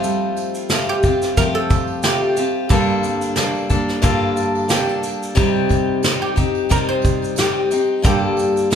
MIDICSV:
0, 0, Header, 1, 5, 480
1, 0, Start_track
1, 0, Key_signature, -2, "minor"
1, 0, Tempo, 668151
1, 24, Time_signature, 4, 2, 24, 8
1, 6287, End_track
2, 0, Start_track
2, 0, Title_t, "Oud"
2, 0, Program_c, 0, 24
2, 518, Note_on_c, 0, 65, 90
2, 638, Note_off_c, 0, 65, 0
2, 641, Note_on_c, 0, 67, 95
2, 962, Note_off_c, 0, 67, 0
2, 986, Note_on_c, 0, 70, 120
2, 1022, Note_off_c, 0, 70, 0
2, 1112, Note_on_c, 0, 69, 111
2, 1460, Note_off_c, 0, 69, 0
2, 1463, Note_on_c, 0, 67, 87
2, 1809, Note_off_c, 0, 67, 0
2, 1934, Note_on_c, 0, 62, 89
2, 2404, Note_off_c, 0, 62, 0
2, 2413, Note_on_c, 0, 62, 89
2, 2891, Note_on_c, 0, 65, 94
2, 2912, Note_off_c, 0, 62, 0
2, 3373, Note_off_c, 0, 65, 0
2, 3376, Note_on_c, 0, 67, 77
2, 3725, Note_off_c, 0, 67, 0
2, 4342, Note_on_c, 0, 65, 92
2, 4465, Note_off_c, 0, 65, 0
2, 4467, Note_on_c, 0, 67, 85
2, 4820, Note_off_c, 0, 67, 0
2, 4823, Note_on_c, 0, 70, 114
2, 4944, Note_off_c, 0, 70, 0
2, 4947, Note_on_c, 0, 72, 107
2, 5310, Note_off_c, 0, 72, 0
2, 5313, Note_on_c, 0, 67, 93
2, 5655, Note_off_c, 0, 67, 0
2, 5791, Note_on_c, 0, 67, 102
2, 6277, Note_off_c, 0, 67, 0
2, 6287, End_track
3, 0, Start_track
3, 0, Title_t, "Nylon-string guitar"
3, 0, Program_c, 1, 24
3, 29, Note_on_c, 1, 55, 81
3, 32, Note_on_c, 1, 69, 72
3, 264, Note_on_c, 1, 63, 65
3, 404, Note_off_c, 1, 63, 0
3, 404, Note_on_c, 1, 65, 46
3, 504, Note_off_c, 1, 69, 0
3, 507, Note_on_c, 1, 69, 69
3, 742, Note_off_c, 1, 65, 0
3, 981, Note_on_c, 1, 60, 71
3, 1218, Note_off_c, 1, 69, 0
3, 1221, Note_on_c, 1, 69, 64
3, 1701, Note_off_c, 1, 69, 0
3, 1704, Note_on_c, 1, 69, 64
3, 1941, Note_off_c, 1, 55, 0
3, 1944, Note_on_c, 1, 55, 85
3, 1946, Note_off_c, 1, 69, 0
3, 1949, Note_on_c, 1, 69, 68
3, 1995, Note_off_c, 1, 60, 0
3, 2188, Note_on_c, 1, 60, 65
3, 2318, Note_off_c, 1, 60, 0
3, 2318, Note_on_c, 1, 62, 46
3, 2414, Note_off_c, 1, 69, 0
3, 2422, Note_on_c, 1, 69, 67
3, 2654, Note_off_c, 1, 62, 0
3, 2663, Note_on_c, 1, 62, 55
3, 2902, Note_on_c, 1, 58, 68
3, 3132, Note_off_c, 1, 69, 0
3, 3140, Note_on_c, 1, 69, 70
3, 3378, Note_off_c, 1, 62, 0
3, 3381, Note_on_c, 1, 60, 63
3, 3513, Note_off_c, 1, 60, 0
3, 3513, Note_on_c, 1, 62, 53
3, 3620, Note_off_c, 1, 69, 0
3, 3623, Note_on_c, 1, 67, 65
3, 3759, Note_off_c, 1, 67, 0
3, 3759, Note_on_c, 1, 69, 56
3, 3859, Note_off_c, 1, 55, 0
3, 3862, Note_on_c, 1, 55, 82
3, 3864, Note_off_c, 1, 69, 0
3, 3867, Note_on_c, 1, 67, 69
3, 3915, Note_off_c, 1, 62, 0
3, 3916, Note_off_c, 1, 58, 0
3, 4098, Note_on_c, 1, 63, 62
3, 4335, Note_off_c, 1, 67, 0
3, 4338, Note_on_c, 1, 67, 66
3, 4567, Note_off_c, 1, 63, 0
3, 4575, Note_on_c, 1, 63, 59
3, 4814, Note_on_c, 1, 60, 66
3, 5053, Note_off_c, 1, 67, 0
3, 5056, Note_on_c, 1, 67, 68
3, 5285, Note_off_c, 1, 63, 0
3, 5293, Note_on_c, 1, 63, 66
3, 5535, Note_off_c, 1, 67, 0
3, 5537, Note_on_c, 1, 67, 61
3, 5778, Note_off_c, 1, 55, 0
3, 5781, Note_on_c, 1, 55, 80
3, 5782, Note_off_c, 1, 67, 0
3, 5785, Note_on_c, 1, 69, 69
3, 5832, Note_off_c, 1, 60, 0
3, 5832, Note_off_c, 1, 63, 0
3, 6021, Note_on_c, 1, 62, 62
3, 6287, Note_off_c, 1, 55, 0
3, 6287, Note_off_c, 1, 62, 0
3, 6287, Note_off_c, 1, 69, 0
3, 6287, End_track
4, 0, Start_track
4, 0, Title_t, "Steel-string acoustic guitar"
4, 0, Program_c, 2, 25
4, 0, Note_on_c, 2, 53, 64
4, 0, Note_on_c, 2, 57, 60
4, 0, Note_on_c, 2, 60, 64
4, 0, Note_on_c, 2, 65, 70
4, 0, Note_on_c, 2, 67, 74
4, 512, Note_off_c, 2, 65, 0
4, 513, Note_off_c, 2, 57, 0
4, 514, Note_off_c, 2, 60, 0
4, 515, Note_off_c, 2, 53, 0
4, 516, Note_on_c, 2, 57, 60
4, 524, Note_on_c, 2, 60, 64
4, 529, Note_on_c, 2, 65, 62
4, 530, Note_off_c, 2, 67, 0
4, 533, Note_on_c, 2, 67, 63
4, 747, Note_off_c, 2, 67, 0
4, 749, Note_off_c, 2, 57, 0
4, 754, Note_off_c, 2, 60, 0
4, 755, Note_on_c, 2, 67, 56
4, 756, Note_off_c, 2, 65, 0
4, 766, Note_on_c, 2, 65, 51
4, 773, Note_on_c, 2, 60, 44
4, 984, Note_off_c, 2, 60, 0
4, 988, Note_on_c, 2, 57, 75
4, 989, Note_off_c, 2, 67, 0
4, 989, Note_on_c, 2, 53, 77
4, 990, Note_off_c, 2, 65, 0
4, 993, Note_on_c, 2, 60, 78
4, 999, Note_on_c, 2, 65, 72
4, 999, Note_on_c, 2, 67, 86
4, 1457, Note_off_c, 2, 60, 0
4, 1460, Note_off_c, 2, 57, 0
4, 1462, Note_on_c, 2, 57, 66
4, 1465, Note_off_c, 2, 65, 0
4, 1466, Note_off_c, 2, 53, 0
4, 1466, Note_on_c, 2, 60, 66
4, 1471, Note_off_c, 2, 67, 0
4, 1473, Note_on_c, 2, 65, 69
4, 1474, Note_on_c, 2, 67, 80
4, 1692, Note_off_c, 2, 67, 0
4, 1700, Note_on_c, 2, 67, 56
4, 1703, Note_off_c, 2, 57, 0
4, 1704, Note_off_c, 2, 60, 0
4, 1704, Note_off_c, 2, 65, 0
4, 1713, Note_on_c, 2, 65, 45
4, 1717, Note_on_c, 2, 60, 47
4, 1939, Note_on_c, 2, 43, 80
4, 1941, Note_off_c, 2, 67, 0
4, 1941, Note_on_c, 2, 50, 75
4, 1944, Note_off_c, 2, 60, 0
4, 1946, Note_off_c, 2, 65, 0
4, 1947, Note_on_c, 2, 58, 93
4, 1948, Note_on_c, 2, 55, 76
4, 1949, Note_on_c, 2, 62, 83
4, 1950, Note_on_c, 2, 69, 91
4, 2407, Note_off_c, 2, 58, 0
4, 2409, Note_off_c, 2, 55, 0
4, 2412, Note_on_c, 2, 55, 59
4, 2414, Note_off_c, 2, 69, 0
4, 2415, Note_off_c, 2, 62, 0
4, 2416, Note_on_c, 2, 58, 66
4, 2421, Note_off_c, 2, 43, 0
4, 2422, Note_off_c, 2, 50, 0
4, 2422, Note_on_c, 2, 69, 68
4, 2423, Note_on_c, 2, 62, 63
4, 2646, Note_off_c, 2, 69, 0
4, 2651, Note_off_c, 2, 62, 0
4, 2655, Note_on_c, 2, 69, 58
4, 2658, Note_off_c, 2, 55, 0
4, 2659, Note_off_c, 2, 58, 0
4, 2659, Note_on_c, 2, 62, 58
4, 2667, Note_on_c, 2, 58, 52
4, 2670, Note_on_c, 2, 55, 54
4, 2878, Note_off_c, 2, 55, 0
4, 2884, Note_off_c, 2, 58, 0
4, 2885, Note_off_c, 2, 62, 0
4, 2886, Note_on_c, 2, 43, 73
4, 2887, Note_on_c, 2, 50, 72
4, 2887, Note_on_c, 2, 55, 71
4, 2889, Note_off_c, 2, 69, 0
4, 2893, Note_on_c, 2, 58, 86
4, 2894, Note_on_c, 2, 62, 81
4, 2898, Note_on_c, 2, 69, 77
4, 3360, Note_off_c, 2, 55, 0
4, 3361, Note_off_c, 2, 58, 0
4, 3363, Note_on_c, 2, 55, 57
4, 3367, Note_off_c, 2, 62, 0
4, 3370, Note_on_c, 2, 58, 67
4, 3373, Note_off_c, 2, 69, 0
4, 3374, Note_off_c, 2, 43, 0
4, 3375, Note_off_c, 2, 50, 0
4, 3376, Note_on_c, 2, 62, 68
4, 3382, Note_on_c, 2, 69, 68
4, 3842, Note_off_c, 2, 55, 0
4, 3843, Note_on_c, 2, 48, 96
4, 3845, Note_off_c, 2, 58, 0
4, 3845, Note_on_c, 2, 55, 98
4, 3848, Note_on_c, 2, 60, 99
4, 3850, Note_off_c, 2, 62, 0
4, 3851, Note_off_c, 2, 69, 0
4, 3852, Note_on_c, 2, 63, 88
4, 3854, Note_on_c, 2, 67, 92
4, 4326, Note_off_c, 2, 60, 0
4, 4327, Note_off_c, 2, 55, 0
4, 4330, Note_on_c, 2, 55, 57
4, 4333, Note_off_c, 2, 48, 0
4, 4333, Note_off_c, 2, 63, 0
4, 4335, Note_on_c, 2, 60, 61
4, 4341, Note_on_c, 2, 63, 69
4, 4343, Note_off_c, 2, 67, 0
4, 4346, Note_on_c, 2, 67, 68
4, 4559, Note_off_c, 2, 67, 0
4, 4567, Note_on_c, 2, 67, 58
4, 4570, Note_off_c, 2, 63, 0
4, 4575, Note_off_c, 2, 60, 0
4, 4577, Note_off_c, 2, 55, 0
4, 4578, Note_on_c, 2, 63, 52
4, 4584, Note_on_c, 2, 60, 49
4, 4809, Note_off_c, 2, 60, 0
4, 4811, Note_on_c, 2, 48, 70
4, 4815, Note_off_c, 2, 63, 0
4, 4815, Note_on_c, 2, 55, 73
4, 4816, Note_off_c, 2, 67, 0
4, 4818, Note_on_c, 2, 60, 78
4, 4824, Note_on_c, 2, 63, 87
4, 4826, Note_on_c, 2, 67, 72
4, 5294, Note_off_c, 2, 60, 0
4, 5297, Note_off_c, 2, 55, 0
4, 5298, Note_off_c, 2, 48, 0
4, 5299, Note_on_c, 2, 55, 64
4, 5303, Note_on_c, 2, 60, 67
4, 5304, Note_off_c, 2, 63, 0
4, 5312, Note_on_c, 2, 63, 64
4, 5317, Note_off_c, 2, 67, 0
4, 5319, Note_on_c, 2, 67, 71
4, 5528, Note_off_c, 2, 67, 0
4, 5536, Note_off_c, 2, 63, 0
4, 5537, Note_on_c, 2, 67, 55
4, 5542, Note_off_c, 2, 55, 0
4, 5544, Note_off_c, 2, 60, 0
4, 5544, Note_on_c, 2, 63, 56
4, 5553, Note_on_c, 2, 60, 38
4, 5764, Note_on_c, 2, 43, 77
4, 5772, Note_on_c, 2, 50, 82
4, 5773, Note_on_c, 2, 55, 86
4, 5776, Note_off_c, 2, 60, 0
4, 5776, Note_off_c, 2, 63, 0
4, 5777, Note_off_c, 2, 67, 0
4, 5779, Note_on_c, 2, 58, 84
4, 5779, Note_on_c, 2, 62, 78
4, 5780, Note_on_c, 2, 69, 87
4, 6250, Note_off_c, 2, 55, 0
4, 6251, Note_off_c, 2, 58, 0
4, 6253, Note_on_c, 2, 55, 57
4, 6254, Note_off_c, 2, 43, 0
4, 6256, Note_off_c, 2, 62, 0
4, 6258, Note_off_c, 2, 50, 0
4, 6259, Note_on_c, 2, 58, 63
4, 6265, Note_on_c, 2, 62, 58
4, 6275, Note_off_c, 2, 69, 0
4, 6287, Note_off_c, 2, 55, 0
4, 6287, Note_off_c, 2, 58, 0
4, 6287, Note_off_c, 2, 62, 0
4, 6287, End_track
5, 0, Start_track
5, 0, Title_t, "Drums"
5, 26, Note_on_c, 9, 82, 70
5, 28, Note_on_c, 9, 54, 50
5, 98, Note_off_c, 9, 82, 0
5, 99, Note_off_c, 9, 54, 0
5, 263, Note_on_c, 9, 54, 56
5, 267, Note_on_c, 9, 82, 45
5, 335, Note_off_c, 9, 54, 0
5, 339, Note_off_c, 9, 82, 0
5, 393, Note_on_c, 9, 82, 47
5, 465, Note_off_c, 9, 82, 0
5, 498, Note_on_c, 9, 82, 73
5, 501, Note_on_c, 9, 38, 108
5, 506, Note_on_c, 9, 54, 79
5, 570, Note_off_c, 9, 82, 0
5, 572, Note_off_c, 9, 38, 0
5, 578, Note_off_c, 9, 54, 0
5, 740, Note_on_c, 9, 82, 48
5, 745, Note_on_c, 9, 36, 75
5, 746, Note_on_c, 9, 54, 46
5, 811, Note_off_c, 9, 82, 0
5, 817, Note_off_c, 9, 36, 0
5, 818, Note_off_c, 9, 54, 0
5, 877, Note_on_c, 9, 82, 55
5, 879, Note_on_c, 9, 38, 40
5, 949, Note_off_c, 9, 82, 0
5, 951, Note_off_c, 9, 38, 0
5, 986, Note_on_c, 9, 54, 51
5, 986, Note_on_c, 9, 82, 81
5, 987, Note_on_c, 9, 36, 84
5, 1057, Note_off_c, 9, 54, 0
5, 1058, Note_off_c, 9, 82, 0
5, 1059, Note_off_c, 9, 36, 0
5, 1221, Note_on_c, 9, 54, 50
5, 1224, Note_on_c, 9, 82, 46
5, 1225, Note_on_c, 9, 36, 94
5, 1293, Note_off_c, 9, 54, 0
5, 1296, Note_off_c, 9, 82, 0
5, 1297, Note_off_c, 9, 36, 0
5, 1346, Note_on_c, 9, 54, 33
5, 1418, Note_off_c, 9, 54, 0
5, 1457, Note_on_c, 9, 82, 80
5, 1459, Note_on_c, 9, 54, 84
5, 1464, Note_on_c, 9, 38, 122
5, 1529, Note_off_c, 9, 82, 0
5, 1531, Note_off_c, 9, 54, 0
5, 1535, Note_off_c, 9, 38, 0
5, 1701, Note_on_c, 9, 54, 52
5, 1702, Note_on_c, 9, 82, 62
5, 1773, Note_off_c, 9, 54, 0
5, 1773, Note_off_c, 9, 82, 0
5, 1940, Note_on_c, 9, 82, 70
5, 1941, Note_on_c, 9, 54, 55
5, 1942, Note_on_c, 9, 36, 127
5, 2012, Note_off_c, 9, 82, 0
5, 2013, Note_off_c, 9, 54, 0
5, 2014, Note_off_c, 9, 36, 0
5, 2176, Note_on_c, 9, 54, 54
5, 2183, Note_on_c, 9, 82, 51
5, 2248, Note_off_c, 9, 54, 0
5, 2255, Note_off_c, 9, 82, 0
5, 2310, Note_on_c, 9, 82, 52
5, 2311, Note_on_c, 9, 54, 33
5, 2382, Note_off_c, 9, 54, 0
5, 2382, Note_off_c, 9, 82, 0
5, 2413, Note_on_c, 9, 54, 74
5, 2416, Note_on_c, 9, 82, 74
5, 2418, Note_on_c, 9, 38, 98
5, 2485, Note_off_c, 9, 54, 0
5, 2488, Note_off_c, 9, 82, 0
5, 2490, Note_off_c, 9, 38, 0
5, 2550, Note_on_c, 9, 54, 30
5, 2622, Note_off_c, 9, 54, 0
5, 2654, Note_on_c, 9, 54, 44
5, 2656, Note_on_c, 9, 82, 49
5, 2661, Note_on_c, 9, 36, 71
5, 2726, Note_off_c, 9, 54, 0
5, 2728, Note_off_c, 9, 82, 0
5, 2733, Note_off_c, 9, 36, 0
5, 2790, Note_on_c, 9, 38, 38
5, 2862, Note_off_c, 9, 38, 0
5, 2897, Note_on_c, 9, 82, 72
5, 2900, Note_on_c, 9, 36, 90
5, 2901, Note_on_c, 9, 54, 48
5, 2968, Note_off_c, 9, 82, 0
5, 2972, Note_off_c, 9, 36, 0
5, 2973, Note_off_c, 9, 54, 0
5, 3137, Note_on_c, 9, 82, 49
5, 3138, Note_on_c, 9, 54, 51
5, 3209, Note_off_c, 9, 82, 0
5, 3210, Note_off_c, 9, 54, 0
5, 3270, Note_on_c, 9, 54, 35
5, 3342, Note_off_c, 9, 54, 0
5, 3370, Note_on_c, 9, 82, 83
5, 3376, Note_on_c, 9, 54, 91
5, 3377, Note_on_c, 9, 38, 127
5, 3442, Note_off_c, 9, 82, 0
5, 3448, Note_off_c, 9, 38, 0
5, 3448, Note_off_c, 9, 54, 0
5, 3616, Note_on_c, 9, 54, 51
5, 3616, Note_on_c, 9, 82, 63
5, 3688, Note_off_c, 9, 54, 0
5, 3688, Note_off_c, 9, 82, 0
5, 3756, Note_on_c, 9, 82, 50
5, 3828, Note_off_c, 9, 82, 0
5, 3856, Note_on_c, 9, 54, 51
5, 3860, Note_on_c, 9, 36, 127
5, 3861, Note_on_c, 9, 82, 71
5, 3928, Note_off_c, 9, 54, 0
5, 3932, Note_off_c, 9, 36, 0
5, 3933, Note_off_c, 9, 82, 0
5, 4089, Note_on_c, 9, 54, 54
5, 4099, Note_on_c, 9, 36, 76
5, 4102, Note_on_c, 9, 82, 48
5, 4161, Note_off_c, 9, 54, 0
5, 4170, Note_off_c, 9, 36, 0
5, 4174, Note_off_c, 9, 82, 0
5, 4329, Note_on_c, 9, 54, 77
5, 4339, Note_on_c, 9, 82, 75
5, 4341, Note_on_c, 9, 38, 109
5, 4401, Note_off_c, 9, 54, 0
5, 4410, Note_off_c, 9, 82, 0
5, 4413, Note_off_c, 9, 38, 0
5, 4569, Note_on_c, 9, 54, 41
5, 4578, Note_on_c, 9, 82, 45
5, 4581, Note_on_c, 9, 36, 80
5, 4641, Note_off_c, 9, 54, 0
5, 4650, Note_off_c, 9, 82, 0
5, 4653, Note_off_c, 9, 36, 0
5, 4704, Note_on_c, 9, 54, 32
5, 4776, Note_off_c, 9, 54, 0
5, 4807, Note_on_c, 9, 54, 53
5, 4822, Note_on_c, 9, 36, 86
5, 4824, Note_on_c, 9, 82, 80
5, 4879, Note_off_c, 9, 54, 0
5, 4894, Note_off_c, 9, 36, 0
5, 4895, Note_off_c, 9, 82, 0
5, 5042, Note_on_c, 9, 54, 48
5, 5062, Note_on_c, 9, 36, 93
5, 5064, Note_on_c, 9, 82, 52
5, 5114, Note_off_c, 9, 54, 0
5, 5134, Note_off_c, 9, 36, 0
5, 5136, Note_off_c, 9, 82, 0
5, 5188, Note_on_c, 9, 54, 31
5, 5203, Note_on_c, 9, 82, 54
5, 5260, Note_off_c, 9, 54, 0
5, 5274, Note_off_c, 9, 82, 0
5, 5288, Note_on_c, 9, 54, 91
5, 5299, Note_on_c, 9, 82, 86
5, 5305, Note_on_c, 9, 38, 114
5, 5360, Note_off_c, 9, 54, 0
5, 5371, Note_off_c, 9, 82, 0
5, 5377, Note_off_c, 9, 38, 0
5, 5539, Note_on_c, 9, 54, 55
5, 5541, Note_on_c, 9, 82, 66
5, 5611, Note_off_c, 9, 54, 0
5, 5613, Note_off_c, 9, 82, 0
5, 5778, Note_on_c, 9, 54, 54
5, 5779, Note_on_c, 9, 82, 72
5, 5781, Note_on_c, 9, 36, 122
5, 5849, Note_off_c, 9, 54, 0
5, 5851, Note_off_c, 9, 82, 0
5, 5853, Note_off_c, 9, 36, 0
5, 6012, Note_on_c, 9, 54, 55
5, 6028, Note_on_c, 9, 82, 52
5, 6084, Note_off_c, 9, 54, 0
5, 6099, Note_off_c, 9, 82, 0
5, 6148, Note_on_c, 9, 54, 33
5, 6158, Note_on_c, 9, 82, 52
5, 6220, Note_off_c, 9, 54, 0
5, 6230, Note_off_c, 9, 82, 0
5, 6256, Note_on_c, 9, 54, 79
5, 6264, Note_on_c, 9, 82, 70
5, 6287, Note_off_c, 9, 54, 0
5, 6287, Note_off_c, 9, 82, 0
5, 6287, End_track
0, 0, End_of_file